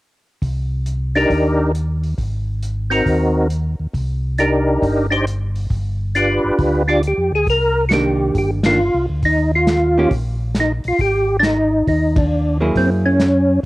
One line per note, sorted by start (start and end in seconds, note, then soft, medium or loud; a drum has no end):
0.42 1.26 C2 medium
0.42 kick soft
0.42 open hi-hat soft
0.86 closed hi-hat soft
1.15 1.71 D4 medium
1.15 1.72 D#4 soft
1.15 1.72 G4 soft
1.15 1.72 A#4 medium
1.15 open hi-hat soft
1.30 2.14 D#2 medium
1.30 kick soft
1.30 open hi-hat soft
1.75 closed hi-hat soft
2.03 open hi-hat soft
2.18 3.02 G#1 medium
2.18 kick soft
2.18 open hi-hat soft
2.62 closed hi-hat soft
2.90 3.47 C4 medium
2.90 3.47 D#4 soft
2.90 3.47 F#4 medium
2.90 3.48 A#4 medium
2.90 open hi-hat soft
3.06 3.75 D#2 medium
3.06 kick soft
3.06 open hi-hat soft
3.50 closed hi-hat soft
3.79 3.87 D#2 soft
3.93 4.78 C2 medium
3.93 kick soft
3.93 open hi-hat soft
4.38 5.06 D4 medium
4.38 5.06 D#4 soft
4.38 5.07 G4 soft
4.38 5.07 A#4 medium
4.38 closed hi-hat soft
4.82 5.67 G1 medium
4.82 kick soft
4.82 open hi-hat soft
5.11 5.25 D4 medium
5.11 5.25 D#4 soft
5.11 5.25 G4 soft
5.11 5.26 C5 medium
5.27 closed hi-hat soft
5.56 open hi-hat soft
5.70 6.40 G1 medium
5.70 kick soft
5.70 open hi-hat soft
6.15 6.82 D4 soft
6.15 6.83 F4 soft
6.15 6.83 G4 soft
6.15 6.83 B4 medium
6.15 closed hi-hat soft
6.44 6.52 G1 soft
6.59 7.14 D2 medium
6.59 kick soft
6.59 open hi-hat soft
6.88 7.01 D4 medium
6.88 7.02 F4 soft
6.88 7.02 G4 medium
6.88 7.02 D5 medium
7.03 closed hi-hat soft
7.07 7.32 G4 medium
7.18 7.31 F2 medium
7.32 7.46 D2 medium
7.32 7.48 G#4 medium
7.47 8.31 C2 medium
7.47 7.85 A#4 loud
7.47 kick soft
7.47 open hi-hat soft
7.89 8.59 D#3 medium
7.89 8.59 A#3 medium
7.89 7.92 F#4 medium
7.89 snare medium
7.89 closed hi-hat soft
7.93 8.59 D4 medium
7.93 8.37 G4 medium
8.35 8.90 G1 medium
8.35 8.51 G4 medium
8.35 kick soft
8.35 open hi-hat soft
8.63 8.78 D#3 medium
8.63 8.79 A#3 medium
8.63 8.79 D4 medium
8.63 9.06 F4 medium
8.63 snare medium
8.63 ride medium
8.94 9.08 C2 medium
9.09 9.23 D2 medium
9.22 10.07 D#2 medium
9.22 9.51 D#4 medium
9.22 kick soft
9.22 open hi-hat soft
9.55 10.09 F4 loud
9.67 snare medium
9.67 closed hi-hat soft
9.97 10.10 D#3 medium
9.97 10.11 A#3 medium
9.97 10.11 C#4 medium
9.97 10.11 G4 medium
10.11 10.80 A#1 medium
10.11 kick soft
10.11 open hi-hat soft
10.54 snare soft
10.54 closed hi-hat soft
10.60 10.72 D#4 medium
10.84 10.92 A#1 soft
10.84 11.00 F4 medium
10.84 open hi-hat soft
10.98 11.83 G#1 medium
10.98 11.37 G4 loud
10.98 kick soft
10.98 open hi-hat soft
11.39 11.44 D4 medium
11.39 snare medium
11.39 closed hi-hat soft
11.44 11.87 D#4 medium
11.87 12.71 D#2 medium
11.87 12.18 D#4 medium
11.87 kick soft
11.87 open hi-hat soft
12.16 12.58 D4 medium
12.16 kick medium
12.16 ride medium
12.60 13.16 F#3 medium
12.60 13.17 A#3 medium
12.60 13.17 E4 medium
12.60 13.17 G#4 medium
12.75 13.59 F#2 medium
12.75 12.90 C4 medium
12.75 kick soft
12.75 open hi-hat soft
13.06 13.60 C#4 loud
13.20 snare medium
13.20 closed hi-hat soft